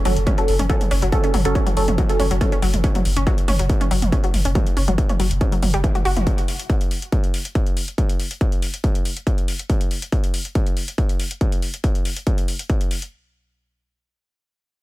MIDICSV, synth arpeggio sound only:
0, 0, Header, 1, 2, 480
1, 0, Start_track
1, 0, Key_signature, 3, "minor"
1, 0, Tempo, 428571
1, 1259, Time_signature, 4, 2, 24, 8
1, 16603, End_track
2, 0, Start_track
2, 0, Title_t, "Synth arpeggio sound"
2, 0, Program_c, 0, 84
2, 59, Note_on_c, 0, 54, 80
2, 131, Note_off_c, 0, 54, 0
2, 299, Note_on_c, 0, 61, 84
2, 406, Note_off_c, 0, 61, 0
2, 425, Note_on_c, 0, 54, 77
2, 490, Note_off_c, 0, 54, 0
2, 664, Note_on_c, 0, 61, 80
2, 762, Note_off_c, 0, 61, 0
2, 779, Note_on_c, 0, 54, 83
2, 851, Note_off_c, 0, 54, 0
2, 1019, Note_on_c, 0, 61, 78
2, 1127, Note_off_c, 0, 61, 0
2, 1146, Note_on_c, 0, 54, 77
2, 1210, Note_off_c, 0, 54, 0
2, 1386, Note_on_c, 0, 61, 72
2, 1482, Note_off_c, 0, 61, 0
2, 1500, Note_on_c, 0, 54, 75
2, 1571, Note_off_c, 0, 54, 0
2, 1740, Note_on_c, 0, 61, 85
2, 1847, Note_off_c, 0, 61, 0
2, 1866, Note_on_c, 0, 54, 78
2, 1930, Note_off_c, 0, 54, 0
2, 2106, Note_on_c, 0, 61, 75
2, 2203, Note_off_c, 0, 61, 0
2, 2220, Note_on_c, 0, 54, 85
2, 2291, Note_off_c, 0, 54, 0
2, 2459, Note_on_c, 0, 61, 81
2, 2566, Note_off_c, 0, 61, 0
2, 2585, Note_on_c, 0, 54, 79
2, 2650, Note_off_c, 0, 54, 0
2, 2825, Note_on_c, 0, 61, 77
2, 2922, Note_off_c, 0, 61, 0
2, 2938, Note_on_c, 0, 54, 74
2, 3010, Note_off_c, 0, 54, 0
2, 3179, Note_on_c, 0, 61, 83
2, 3287, Note_off_c, 0, 61, 0
2, 3305, Note_on_c, 0, 54, 72
2, 3370, Note_off_c, 0, 54, 0
2, 3545, Note_on_c, 0, 61, 79
2, 3642, Note_off_c, 0, 61, 0
2, 3658, Note_on_c, 0, 54, 84
2, 3730, Note_off_c, 0, 54, 0
2, 3898, Note_on_c, 0, 61, 80
2, 4006, Note_off_c, 0, 61, 0
2, 4024, Note_on_c, 0, 54, 75
2, 4089, Note_off_c, 0, 54, 0
2, 4265, Note_on_c, 0, 61, 77
2, 4362, Note_off_c, 0, 61, 0
2, 4379, Note_on_c, 0, 54, 79
2, 4451, Note_off_c, 0, 54, 0
2, 4619, Note_on_c, 0, 61, 81
2, 4726, Note_off_c, 0, 61, 0
2, 4745, Note_on_c, 0, 54, 78
2, 4810, Note_off_c, 0, 54, 0
2, 4986, Note_on_c, 0, 61, 75
2, 5082, Note_off_c, 0, 61, 0
2, 5099, Note_on_c, 0, 54, 84
2, 5171, Note_off_c, 0, 54, 0
2, 5339, Note_on_c, 0, 61, 76
2, 5447, Note_off_c, 0, 61, 0
2, 5465, Note_on_c, 0, 54, 81
2, 5530, Note_off_c, 0, 54, 0
2, 5706, Note_on_c, 0, 61, 76
2, 5803, Note_off_c, 0, 61, 0
2, 5820, Note_on_c, 0, 54, 76
2, 5891, Note_off_c, 0, 54, 0
2, 6059, Note_on_c, 0, 61, 79
2, 6167, Note_off_c, 0, 61, 0
2, 6185, Note_on_c, 0, 54, 78
2, 6250, Note_off_c, 0, 54, 0
2, 6300, Note_on_c, 0, 54, 77
2, 6342, Note_off_c, 0, 54, 0
2, 6426, Note_on_c, 0, 55, 102
2, 6464, Note_off_c, 0, 55, 0
2, 6539, Note_on_c, 0, 52, 81
2, 6611, Note_off_c, 0, 52, 0
2, 6665, Note_on_c, 0, 66, 79
2, 6704, Note_off_c, 0, 66, 0
2, 6779, Note_on_c, 0, 66, 106
2, 6887, Note_off_c, 0, 66, 0
2, 6905, Note_on_c, 0, 52, 79
2, 6970, Note_off_c, 0, 52, 0
2, 16603, End_track
0, 0, End_of_file